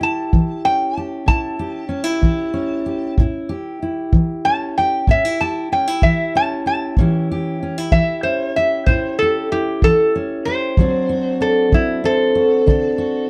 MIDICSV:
0, 0, Header, 1, 4, 480
1, 0, Start_track
1, 0, Tempo, 633580
1, 2400, Time_signature, 12, 3, 24, 8
1, 10075, End_track
2, 0, Start_track
2, 0, Title_t, "Resonator guitar played with a steel bar"
2, 0, Program_c, 0, 25
2, 24, Note_on_c, 0, 81, 83
2, 480, Note_off_c, 0, 81, 0
2, 492, Note_on_c, 0, 79, 81
2, 729, Note_off_c, 0, 79, 0
2, 729, Note_on_c, 0, 81, 79
2, 959, Note_off_c, 0, 81, 0
2, 968, Note_on_c, 0, 81, 87
2, 2371, Note_off_c, 0, 81, 0
2, 3371, Note_on_c, 0, 81, 83
2, 3597, Note_off_c, 0, 81, 0
2, 3618, Note_on_c, 0, 79, 74
2, 3841, Note_off_c, 0, 79, 0
2, 3870, Note_on_c, 0, 76, 77
2, 4087, Note_off_c, 0, 76, 0
2, 4095, Note_on_c, 0, 81, 74
2, 4319, Note_off_c, 0, 81, 0
2, 4338, Note_on_c, 0, 79, 71
2, 4560, Note_off_c, 0, 79, 0
2, 4569, Note_on_c, 0, 76, 80
2, 4796, Note_off_c, 0, 76, 0
2, 4823, Note_on_c, 0, 81, 85
2, 5043, Note_off_c, 0, 81, 0
2, 5054, Note_on_c, 0, 81, 83
2, 5278, Note_off_c, 0, 81, 0
2, 6000, Note_on_c, 0, 76, 87
2, 6231, Note_off_c, 0, 76, 0
2, 6236, Note_on_c, 0, 72, 74
2, 6470, Note_off_c, 0, 72, 0
2, 6487, Note_on_c, 0, 76, 75
2, 6715, Note_off_c, 0, 76, 0
2, 6715, Note_on_c, 0, 72, 79
2, 6949, Note_off_c, 0, 72, 0
2, 6960, Note_on_c, 0, 69, 82
2, 7192, Note_off_c, 0, 69, 0
2, 7211, Note_on_c, 0, 67, 76
2, 7438, Note_off_c, 0, 67, 0
2, 7455, Note_on_c, 0, 69, 98
2, 7680, Note_off_c, 0, 69, 0
2, 7920, Note_on_c, 0, 72, 93
2, 8620, Note_off_c, 0, 72, 0
2, 8649, Note_on_c, 0, 69, 79
2, 8879, Note_off_c, 0, 69, 0
2, 8896, Note_on_c, 0, 64, 74
2, 9123, Note_off_c, 0, 64, 0
2, 9132, Note_on_c, 0, 69, 93
2, 10062, Note_off_c, 0, 69, 0
2, 10075, End_track
3, 0, Start_track
3, 0, Title_t, "Steel-string acoustic guitar"
3, 0, Program_c, 1, 25
3, 0, Note_on_c, 1, 67, 68
3, 5, Note_on_c, 1, 64, 55
3, 253, Note_on_c, 1, 52, 57
3, 493, Note_on_c, 1, 61, 54
3, 680, Note_off_c, 1, 52, 0
3, 734, Note_off_c, 1, 67, 0
3, 737, Note_on_c, 1, 67, 57
3, 956, Note_on_c, 1, 45, 68
3, 966, Note_off_c, 1, 64, 0
3, 969, Note_on_c, 1, 64, 58
3, 1203, Note_off_c, 1, 67, 0
3, 1206, Note_on_c, 1, 67, 65
3, 1391, Note_off_c, 1, 45, 0
3, 1427, Note_off_c, 1, 64, 0
3, 1430, Note_off_c, 1, 61, 0
3, 1430, Note_on_c, 1, 61, 58
3, 1543, Note_off_c, 1, 61, 0
3, 1543, Note_on_c, 1, 64, 45
3, 1678, Note_on_c, 1, 52, 57
3, 1921, Note_on_c, 1, 61, 55
3, 2111, Note_off_c, 1, 52, 0
3, 2163, Note_off_c, 1, 67, 0
3, 2166, Note_on_c, 1, 67, 61
3, 2390, Note_off_c, 1, 64, 0
3, 2413, Note_on_c, 1, 45, 70
3, 2422, Note_on_c, 1, 64, 57
3, 2435, Note_off_c, 1, 67, 0
3, 2645, Note_on_c, 1, 67, 68
3, 2668, Note_off_c, 1, 61, 0
3, 2837, Note_off_c, 1, 45, 0
3, 2888, Note_off_c, 1, 64, 0
3, 2897, Note_on_c, 1, 64, 52
3, 3127, Note_on_c, 1, 52, 55
3, 3382, Note_on_c, 1, 61, 52
3, 3554, Note_off_c, 1, 52, 0
3, 3600, Note_off_c, 1, 67, 0
3, 3625, Note_on_c, 1, 67, 61
3, 3846, Note_off_c, 1, 61, 0
3, 3846, Note_off_c, 1, 64, 0
3, 3851, Note_on_c, 1, 45, 71
3, 3855, Note_on_c, 1, 61, 57
3, 3976, Note_off_c, 1, 61, 0
3, 3976, Note_on_c, 1, 64, 45
3, 4089, Note_off_c, 1, 67, 0
3, 4098, Note_on_c, 1, 67, 63
3, 4276, Note_off_c, 1, 45, 0
3, 4326, Note_off_c, 1, 64, 0
3, 4334, Note_on_c, 1, 61, 53
3, 4451, Note_off_c, 1, 61, 0
3, 4451, Note_on_c, 1, 64, 44
3, 4573, Note_on_c, 1, 52, 57
3, 4813, Note_on_c, 1, 61, 61
3, 4997, Note_off_c, 1, 52, 0
3, 5036, Note_off_c, 1, 67, 0
3, 5045, Note_on_c, 1, 67, 55
3, 5252, Note_off_c, 1, 67, 0
3, 5256, Note_off_c, 1, 61, 0
3, 5284, Note_off_c, 1, 64, 0
3, 5289, Note_on_c, 1, 45, 66
3, 5290, Note_on_c, 1, 52, 53
3, 5293, Note_on_c, 1, 61, 56
3, 5302, Note_on_c, 1, 64, 52
3, 5304, Note_on_c, 1, 67, 64
3, 5530, Note_off_c, 1, 67, 0
3, 5542, Note_on_c, 1, 67, 68
3, 5715, Note_off_c, 1, 45, 0
3, 5768, Note_off_c, 1, 61, 0
3, 5770, Note_off_c, 1, 64, 0
3, 5777, Note_on_c, 1, 61, 49
3, 5892, Note_off_c, 1, 61, 0
3, 5892, Note_on_c, 1, 64, 46
3, 5993, Note_off_c, 1, 52, 0
3, 6003, Note_on_c, 1, 52, 53
3, 6236, Note_on_c, 1, 61, 55
3, 6432, Note_off_c, 1, 52, 0
3, 6487, Note_off_c, 1, 67, 0
3, 6496, Note_on_c, 1, 67, 60
3, 6720, Note_off_c, 1, 64, 0
3, 6726, Note_on_c, 1, 45, 67
3, 6732, Note_on_c, 1, 64, 55
3, 6967, Note_off_c, 1, 67, 0
3, 6987, Note_on_c, 1, 67, 58
3, 7155, Note_off_c, 1, 45, 0
3, 7204, Note_off_c, 1, 64, 0
3, 7213, Note_on_c, 1, 64, 56
3, 7456, Note_on_c, 1, 52, 55
3, 7679, Note_off_c, 1, 61, 0
3, 7694, Note_on_c, 1, 61, 58
3, 7880, Note_off_c, 1, 52, 0
3, 7924, Note_off_c, 1, 67, 0
3, 7934, Note_on_c, 1, 67, 59
3, 8138, Note_off_c, 1, 67, 0
3, 8139, Note_off_c, 1, 61, 0
3, 8139, Note_off_c, 1, 64, 0
3, 8164, Note_on_c, 1, 50, 63
3, 8170, Note_on_c, 1, 54, 56
3, 8181, Note_on_c, 1, 60, 58
3, 8183, Note_on_c, 1, 62, 53
3, 8187, Note_on_c, 1, 66, 61
3, 8394, Note_off_c, 1, 66, 0
3, 8403, Note_on_c, 1, 66, 64
3, 8595, Note_off_c, 1, 50, 0
3, 8632, Note_off_c, 1, 62, 0
3, 8641, Note_on_c, 1, 62, 54
3, 8873, Note_off_c, 1, 54, 0
3, 8882, Note_on_c, 1, 54, 58
3, 9111, Note_off_c, 1, 60, 0
3, 9120, Note_on_c, 1, 60, 53
3, 9316, Note_off_c, 1, 54, 0
3, 9348, Note_off_c, 1, 66, 0
3, 9357, Note_on_c, 1, 66, 59
3, 9588, Note_off_c, 1, 62, 0
3, 9594, Note_on_c, 1, 50, 69
3, 9599, Note_on_c, 1, 62, 61
3, 9826, Note_off_c, 1, 66, 0
3, 9835, Note_on_c, 1, 66, 64
3, 10033, Note_off_c, 1, 50, 0
3, 10062, Note_off_c, 1, 62, 0
3, 10075, Note_off_c, 1, 60, 0
3, 10075, Note_off_c, 1, 66, 0
3, 10075, End_track
4, 0, Start_track
4, 0, Title_t, "Drums"
4, 250, Note_on_c, 9, 36, 66
4, 326, Note_off_c, 9, 36, 0
4, 968, Note_on_c, 9, 36, 63
4, 1044, Note_off_c, 9, 36, 0
4, 1687, Note_on_c, 9, 36, 62
4, 1763, Note_off_c, 9, 36, 0
4, 2407, Note_on_c, 9, 36, 63
4, 2483, Note_off_c, 9, 36, 0
4, 3126, Note_on_c, 9, 36, 68
4, 3202, Note_off_c, 9, 36, 0
4, 3844, Note_on_c, 9, 36, 60
4, 3920, Note_off_c, 9, 36, 0
4, 4562, Note_on_c, 9, 36, 59
4, 4637, Note_off_c, 9, 36, 0
4, 5278, Note_on_c, 9, 36, 59
4, 5354, Note_off_c, 9, 36, 0
4, 5999, Note_on_c, 9, 36, 65
4, 6074, Note_off_c, 9, 36, 0
4, 6719, Note_on_c, 9, 36, 63
4, 6794, Note_off_c, 9, 36, 0
4, 7441, Note_on_c, 9, 36, 59
4, 7517, Note_off_c, 9, 36, 0
4, 8162, Note_on_c, 9, 36, 65
4, 8237, Note_off_c, 9, 36, 0
4, 8882, Note_on_c, 9, 36, 65
4, 8958, Note_off_c, 9, 36, 0
4, 9605, Note_on_c, 9, 36, 66
4, 9681, Note_off_c, 9, 36, 0
4, 10075, End_track
0, 0, End_of_file